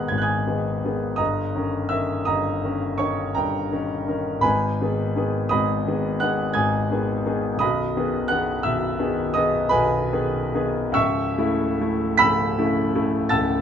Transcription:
Already playing: G#1 G#2 D#3 B3 G#4 D#5 F#5 B5 D#6 F#6
0.08 G#1 G#2 G#6
0.18 F#6 G#6
0.23 G#5 D#6
0.47 D#3 B3 G#4
0.84 D#3 B3 G#4
1.16 G1 G2 D#5 A#5 D#6
1.55 D#3 C#4 A#4
1.89 D#3 C#4 A#4 E5 E6
2.25 G1 G2 D#5 A#5 D#6
2.64 D#3 C#4 A#4
2.98 D#3 C#4 A#4 C#5 C#6
3.35 G1 G2 A#4 G5 A#5
3.72 D#3 C#4 A#4
4.08 D#3 C#4 A#4
4.41 G#1 G#2 B4 G#5 B5
4.81 D#3 B3 G#4
5.16 D#3 B3 G#4
5.49 G#1 G#2 D#5 B5 D#6
5.87 D#3 B3 G#4
6.20 D#3 B3 G#4 F#5 F#6
6.54 G#1 G#2 G#5 D#6 G#6
6.91 D#3 B3 G#4
7.26 D#3 B3 G#4
7.56 B0 D#6
7.60 B1 D#5 B5
7.97 D#3 B3 G#4
8.28 D#3 B3 G#4 F#5 F#6
8.63 B0 B1 E5 E6
8.99 D#3 B3 G#4
9.34 D#3 B3 G#4 D#5 D#6
9.69 B0 B1 B4 G#5 B5
10.13 D#3 B3 G#4
10.54 D#3 B3 G#4
10.92 C#2 E5 C#6 E6
10.96 C#1
11.38 C#3 A3 E4
11.80 C#3 A3 E4
12.18 C#1 C#2 B5 E6 B6
12.58 C#3 A3 E4
12.95 C#3 A3 E4
13.29 C#1 C#2 A5 E6 A6

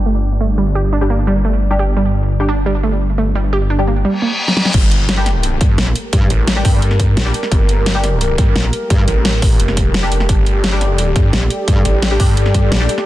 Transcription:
Already playing: G1 G4 A4 D5
0.06 A3
0.41 A3
0.58 G3
0.75 G4
0.93 D4
1.01 G3 D4 G4
1.10 A#3
1.27 G3
1.45 A3
1.71 G3 D4 G4
1.79 G4
1.97 G3
2.40 G3 D4 G4
2.49 D4
2.66 G3
2.83 A3
3.18 A3
3.35 G3
3.53 G4
3.70 D4
3.79 G3 D4 G4
3.87 A#3
4.05 G3, reverse cymbal
4.22 A#3
4.48 snare
4.57 G3, snare
4.65 snare
4.74 G1 G4 A4 A#4, kick, closed hi-hat, crash, impact
4.91 closed hi-hat
5.09 snare, closed hi-hat
5.17 G3 D4 G4
5.26 snare, closed hi-hat
5.43 closed hi-hat
5.61 G2, kick, closed hi-hat
5.78 A#1, snare, closed hi-hat
5.87 snare
5.96 closed hi-hat
6.13 G2, kick, closed hi-hat
6.30 A1, closed hi-hat
6.47 snare, closed hi-hat
6.56 G3 D4 G4
6.65 G2, kick, open hi-hat
6.82 closed hi-hat
6.91 snare
7.00 G2, kick, closed hi-hat
7.17 A#1, snare, closed hi-hat
7.26 G3 D4 G4
7.34 closed hi-hat
7.43 snare
7.52 G1, kick, closed hi-hat
7.69 closed hi-hat
7.86 snare, closed hi-hat
7.95 G3 D4 G4
8.04 snare, closed hi-hat
8.21 closed hi-hat
8.38 G2, kick, closed hi-hat
8.56 A#1, snare, closed hi-hat
8.64 snare
8.73 closed hi-hat
8.90 G2, kick, closed hi-hat
9.08 A1, closed hi-hat
9.25 snare, closed hi-hat
9.42 A1, kick, open hi-hat
9.60 F1, closed hi-hat
9.68 snare
9.77 kick, closed hi-hat
9.94 snare, closed hi-hat
10.03 G3 D4 G4
10.12 F1, closed hi-hat
10.20 snare
10.29 G1 D5, kick, closed hi-hat
10.46 closed hi-hat
10.64 snare, closed hi-hat
10.72 G3 D4 G4
10.81 snare, closed hi-hat
10.98 closed hi-hat
11.16 G2, kick, closed hi-hat
11.33 A#1, snare, closed hi-hat
11.42 snare
11.50 closed hi-hat
11.68 G2, kick, closed hi-hat
11.85 A1, closed hi-hat
12.02 snare, closed hi-hat
12.11 G3 D4 G4
12.20 G2, kick, open hi-hat
12.37 closed hi-hat
12.46 snare
12.54 G2, kick, closed hi-hat
12.72 A#1, snare, closed hi-hat
12.80 G3 D4 G4
12.89 closed hi-hat
12.98 snare

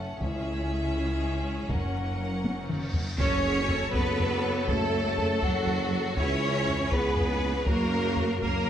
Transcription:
Already playing: F#1 F#2 A3 C#4 A4 F#5
0.20 C#2 C#3 C#4 E4 G#4 E5, taiko
0.95 G#3
1.69 F#1 F#2 A#3 C#4 A#4 F#5, taiko, cymbal swell
2.44 taiko high
2.69 taiko mid
2.94 taiko low
3.18 F#1 F#2 C#3 F#3 C#4 A4 C#5, taiko, impact
3.44 G#4
3.69 A4, taiko low
3.93 F#1 F#2 B3 B4, taiko
4.18 taiko low
4.68 F#1 F#2 A3 A4, taiko
5.18 taiko low
5.42 F#1 F#2 F#3 F#4, taiko
5.67 taiko low
6.17 C#2 C#3 E3 C#4 E4 G#4 C#5, taiko
6.67 taiko low
6.91 C#2 B3 G#4 B4, taiko
7.17 taiko low
7.66 F#1 F#2 F#3 A#3 F#4 A#4, taiko
8.17 taiko low
8.41 F#1 F#2 A#3 A#4, taiko
8.67 taiko low

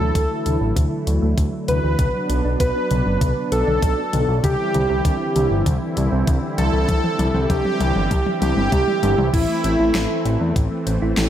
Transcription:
Already playing: D3 E3 F#3 A3 E4 A4
0.00 D2 A3, mid tom
0.15 D2 D4, kick, closed hi-hat
0.30 A3
0.46 D2 F#3, closed hi-hat, mid tom
0.61 A1 E3
0.76 D2 D3, kick, closed hi-hat, mid tom
0.92 E3
1.07 D2 F#3, closed hi-hat
1.22 D2 A3
1.37 D2 D4, kick, closed hi-hat
1.53 A3
1.68 D2 F#3 B4, closed hi-hat, mid tom
1.84 D2 E3
1.99 B1 D3 B3 D4, kick, closed hi-hat, mid tom
2.14 F#3
2.29 B1 B3, closed hi-hat
2.45 B1 D4
2.60 B1 F#4 B4, kick, closed hi-hat
2.75 D4
2.91 B1 B3, closed hi-hat, mid tom
3.06 F#1 F#3
3.21 B1 D3, kick, closed hi-hat, mid tom
3.37 F#3
3.52 B1 B3 A4, closed hi-hat
3.67 B1 D4, mid tom
3.82 B1 F#4, kick, closed hi-hat
3.98 D4
4.13 B1 B3, closed hi-hat, mid tom
4.28 B1 F#3
4.44 C2 D3 E3 G3 C4 E4 G4, kick, closed hi-hat, mid tom
4.59 E3
4.74 C2 G3, closed hi-hat, mid tom
4.90 C2 C4
5.05 C2 D4, kick, closed hi-hat, mid tom
5.20 C4
5.36 C2 G3, closed hi-hat, mid tom
5.51 G1 E3
5.66 C2 D3, kick, closed hi-hat, mid tom
5.82 E3
5.97 C2 G3, closed hi-hat, mid tom
6.12 C2 C4
6.27 C2 D4, kick, closed hi-hat, mid tom
6.43 C4
6.58 C2 G3 A4, closed hi-hat, mid tom
6.73 C2 E3
6.89 C2 D3, kick, closed hi-hat, mid tom
7.04 E3, mid tom
7.19 C2 G3, closed hi-hat, mid tom
7.35 C2 C4, mid tom
7.50 C2 D4 G4, kick, closed hi-hat, mid tom
7.65 C4, mid tom
7.80 C2 G3, closed hi-hat, mid tom
7.96 G1 E3, mid tom
8.11 C2 D3, kick, closed hi-hat, mid tom
8.26 E3, mid tom
8.42 C2 G3 G4, closed hi-hat, mid tom
8.57 G1 C4, mid tom
8.72 C2 D4, kick, closed hi-hat, mid tom
8.88 C4, mid tom
9.03 G1 G3, closed hi-hat, mid tom
9.18 C2 E3, mid tom
9.34 A1 E3 A3 C4 E4, kick, closed hi-hat, crash
9.49 A3
9.64 A1 C4, closed hi-hat
9.79 A1 E4
9.95 A1 A4, snare, closed hi-hat
10.10 E4
10.25 A1 C4, closed hi-hat
10.41 E2 A3
10.56 A1 E3, kick, closed hi-hat
10.71 A3
10.87 A1 C4, closed hi-hat
11.02 A1 E4
11.17 A1 A4, snare, closed hi-hat

